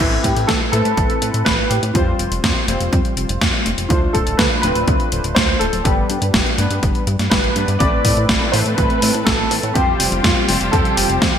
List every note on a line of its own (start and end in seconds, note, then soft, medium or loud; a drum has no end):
0.00 0.18 A1 medium
0.00 0.70 A3 medium
0.00 0.70 C4 medium
0.00 0.24 E4 medium
0.00 0.70 E4 medium
0.00 0.70 B4 loud
0.23 0.33 A2 medium
0.23 0.46 G4 medium
0.23 kick medium
0.23 closed hi-hat medium
0.36 0.46 A2 medium
0.36 closed hi-hat medium
0.47 0.58 A1 medium
0.47 0.53 A4 medium
0.47 kick loud
0.47 snare loud
0.47 closed hi-hat medium
0.72 0.82 A2 loud
0.72 1.19 A3 medium
0.72 1.19 C4 medium
0.72 1.19 E4 medium
0.72 1.48 A4 loud
0.72 1.19 B4 loud
0.72 closed hi-hat medium
0.85 0.94 A2 medium
0.85 closed hi-hat medium
0.97 1.07 A1 loud
0.97 kick loud
0.97 closed hi-hat medium
1.10 closed hi-hat soft
1.22 1.31 A2 medium
1.22 1.92 A3 medium
1.22 1.92 C4 medium
1.22 1.92 E4 medium
1.22 1.92 B4 medium
1.22 closed hi-hat medium
1.34 1.43 A2 medium
1.34 closed hi-hat medium
1.45 1.65 A1 medium
1.45 1.68 B4 loud
1.45 kick loud
1.45 snare loud
1.45 closed hi-hat medium
1.69 1.80 A2 medium
1.69 1.75 G4 medium
1.69 closed hi-hat medium
1.83 1.92 A2 loud
1.83 closed hi-hat medium
1.94 2.13 F2 loud
1.94 2.65 G3 medium
1.94 2.65 C4 medium
1.94 2.88 F4 medium
1.94 2.65 F4 medium
1.94 2.65 C5 loud
1.94 kick loud
1.94 closed hi-hat medium
2.19 2.29 F1 medium
2.19 closed hi-hat medium
2.32 2.41 F1 medium
2.32 closed hi-hat medium
2.44 2.53 F2 medium
2.44 kick loud
2.44 snare loud
2.44 closed hi-hat medium
2.68 2.77 F1 loud
2.68 3.14 G3 medium
2.68 3.14 C4 medium
2.68 3.14 F4 medium
2.68 3.14 C5 loud
2.68 closed hi-hat medium
2.80 2.90 F1 medium
2.80 closed hi-hat soft
2.93 3.02 F2 medium
2.93 kick loud
2.93 closed hi-hat medium
3.05 closed hi-hat soft
3.17 3.26 F1 loud
3.17 3.87 G3 medium
3.17 3.87 C4 medium
3.17 3.87 F4 medium
3.17 3.87 C5 medium
3.17 closed hi-hat medium
3.29 3.38 F1 medium
3.29 closed hi-hat medium
3.41 3.51 F2 medium
3.41 kick loud
3.41 snare loud
3.41 closed hi-hat medium
3.66 3.75 F1 medium
3.66 closed hi-hat medium
3.78 3.87 F1 medium
3.78 closed hi-hat soft
3.89 4.09 D2 medium
3.89 4.60 A3 medium
3.89 4.60 D4 medium
3.89 4.15 F4 medium
3.89 4.60 F4 medium
3.89 4.60 C5 loud
3.89 kick loud
3.89 closed hi-hat medium
4.13 4.24 D1 medium
4.13 4.39 A4 medium
4.13 kick medium
4.13 closed hi-hat medium
4.27 4.36 D1 medium
4.27 closed hi-hat medium
4.37 4.48 D2 medium
4.37 4.60 B4 medium
4.37 kick loud
4.37 snare loud
4.37 closed hi-hat medium
4.62 4.73 D1 loud
4.62 5.09 A3 medium
4.62 5.09 C4 loud
4.62 5.09 D4 medium
4.62 5.09 F4 medium
4.62 5.32 B4 loud
4.62 closed hi-hat medium
4.75 4.85 D1 medium
4.75 closed hi-hat soft
4.88 4.97 D2 medium
4.88 kick loud
4.88 closed hi-hat medium
5.00 closed hi-hat soft
5.12 5.21 D1 medium
5.12 5.82 A3 medium
5.12 5.82 D4 medium
5.12 5.82 F4 medium
5.12 5.82 C5 medium
5.12 closed hi-hat medium
5.24 5.33 D1 medium
5.24 closed hi-hat medium
5.35 5.55 D2 medium
5.35 5.61 C5 loud
5.35 kick loud
5.35 snare loud
5.35 closed hi-hat medium
5.59 5.70 D1 medium
5.59 5.85 A4 loud
5.59 closed hi-hat medium
5.73 5.82 D1 loud
5.73 closed hi-hat soft
5.84 6.04 G1 loud
5.84 6.56 G3 loud
5.84 6.56 B3 medium
5.84 6.56 D4 medium
5.84 6.78 G4 medium
5.84 6.56 B4 loud
5.84 kick loud
5.84 closed hi-hat medium
6.10 6.19 G2 medium
6.10 closed hi-hat medium
6.22 6.31 G2 medium
6.22 closed hi-hat medium
6.34 6.43 G1 medium
6.34 kick loud
6.34 snare loud
6.34 closed hi-hat medium
6.46 closed hi-hat soft
6.58 6.68 G2 loud
6.58 7.04 G3 medium
6.58 7.04 B3 medium
6.58 7.04 D4 medium
6.58 7.04 B4 loud
6.58 closed hi-hat medium
6.71 6.80 G2 medium
6.71 closed hi-hat soft
6.83 6.92 G1 medium
6.83 kick loud
6.83 closed hi-hat medium
6.95 closed hi-hat soft
7.07 7.16 G2 loud
7.07 closed hi-hat medium
7.19 7.29 G2 medium
7.19 snare soft
7.19 closed hi-hat soft
7.30 7.50 G1 medium
7.30 7.53 G3 medium
7.30 7.53 B3 medium
7.30 7.53 D4 medium
7.30 7.81 B4 loud
7.30 7.53 B4 medium
7.30 kick loud
7.30 snare loud
7.30 closed hi-hat medium
7.44 closed hi-hat soft
7.56 7.65 G2 loud
7.56 7.78 G3 medium
7.56 7.78 B3 medium
7.56 7.78 D4 medium
7.56 7.78 B4 loud
7.56 closed hi-hat medium
7.68 7.77 G2 loud
7.68 closed hi-hat soft
7.79 7.99 A1 loud
7.79 9.74 E3 medium
7.79 9.74 A3 medium
7.79 8.51 A3 medium
7.79 9.74 C4 medium
7.79 8.51 C4 medium
7.79 8.51 E4 medium
7.79 9.74 A4 medium
7.79 9.74 B4 medium
7.79 8.51 B4 loud
7.79 8.55 D5 loud
7.79 kick loud
7.79 closed hi-hat medium
8.05 8.14 A2 medium
8.05 kick medium
8.05 open hi-hat loud
8.17 8.26 A2 medium
8.17 closed hi-hat soft
8.29 8.38 A1 medium
8.29 kick loud
8.29 snare loud
8.29 closed hi-hat medium
8.52 8.63 A2 loud
8.52 8.99 A3 medium
8.52 8.99 C4 medium
8.52 8.99 E4 medium
8.52 8.99 B4 loud
8.52 8.58 C5 loud
8.52 open hi-hat loud
8.66 8.75 A2 medium
8.66 closed hi-hat soft
8.76 8.87 A1 medium
8.76 9.27 B4 loud
8.76 kick loud
8.76 closed hi-hat medium
8.90 closed hi-hat soft
9.02 9.11 A2 medium
9.02 9.73 A3 medium
9.02 9.73 C4 medium
9.02 9.73 E4 medium
9.02 9.73 B4 medium
9.02 open hi-hat loud
9.14 9.24 A2 medium
9.14 closed hi-hat soft
9.25 9.45 A1 medium
9.25 9.71 A4 medium
9.25 kick loud
9.25 snare loud
9.25 closed hi-hat medium
9.51 9.60 A2 medium
9.51 open hi-hat loud
9.63 9.72 A2 loud
9.63 closed hi-hat soft
9.74 9.94 F2 loud
9.74 11.39 C3 medium
9.74 11.39 F3 medium
9.74 11.39 G3 medium
9.74 10.46 G3 medium
9.74 10.46 C4 medium
9.74 11.39 F4 medium
9.74 10.46 F4 medium
9.74 10.25 G4 medium
9.74 11.39 G4 medium
9.74 10.46 C5 loud
9.74 kick loud
9.74 closed hi-hat medium
10.00 10.09 F1 medium
10.00 open hi-hat loud
10.12 10.21 F1 medium
10.12 closed hi-hat medium
10.23 10.33 F2 medium
10.23 10.69 F4 medium
10.23 kick loud
10.23 snare loud
10.23 closed hi-hat medium
10.49 10.58 F1 loud
10.49 10.95 G3 medium
10.49 10.95 C4 medium
10.49 10.95 F4 medium
10.49 10.95 C5 loud
10.49 open hi-hat loud
10.61 10.70 F1 medium
10.61 closed hi-hat soft
10.71 10.82 F2 medium
10.71 10.95 A4 medium
10.71 kick loud
10.71 closed hi-hat medium
10.85 closed hi-hat soft
10.96 11.07 F1 loud
10.96 11.39 G3 medium
10.96 11.39 C4 medium
10.96 11.39 F4 medium
10.96 11.39 G4 medium
10.96 11.39 C5 medium
10.96 open hi-hat loud
11.09 11.19 F1 medium
11.09 closed hi-hat soft
11.22 11.31 F2 medium
11.22 kick loud
11.22 snare loud
11.22 closed hi-hat medium